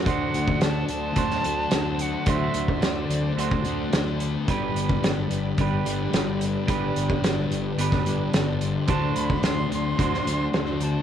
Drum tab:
HH |x-x-x-x-x-x-x-x-|x-x-x-x-x-x-x-x-|x-x-x-x-x-x-x-x-|x-x-x-x-x-x-x-x-|
SD |----o----o--o---|----o-------o---|----o-------o---|----o----o--o---|
BD |o--o----o-------|o--o-----o------|o--o----o-------|o--o-----o------|

HH |x-x-x-x-x-x-x-x-|
SD |----o----o--o---|
BD |o--o----o-------|